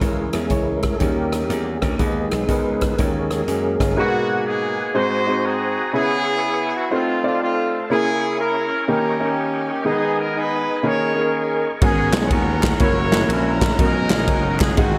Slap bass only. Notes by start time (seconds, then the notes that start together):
0.01 C#2
0.34 E2
0.50 C#2
1.02 D#2
1.50 E2
1.82 D2
2.00 D#2
2.32 B1
2.49 C#2
3.00 D#2
3.48 F#2
3.80 G1
11.82 G#1
12.13 B1
12.30 D#2
12.80 F#1
13.28 A#1
13.79 B1
14.11 A#1
14.28 F#1
14.78 G#1